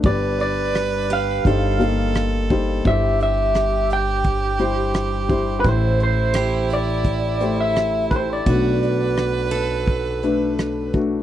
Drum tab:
HH |xxxxxxxx|xxxxxxxx|xxxxxxxx|xxxxxxxx|
SD |--r---r-|--r---r-|--r---r-|--r---r-|
BD |o---o--o|o---o--o|o---o--o|o---o--o|